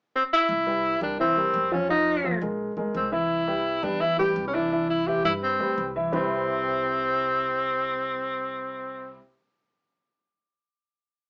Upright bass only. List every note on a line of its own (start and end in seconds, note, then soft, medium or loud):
0.49 0.98 C2 medium
1.01 1.50 C2 medium
1.54 2.36 F2 medium
2.42 2.75 A#1 medium
2.77 2.93 A#1 medium
2.94 3.77 C2 medium
3.83 4.32 E2 medium
4.36 5.19 C2 medium
5.25 5.58 G2 medium
5.60 5.77 D2 medium
5.78 6.09 C2 medium
6.13 9.18 C2 medium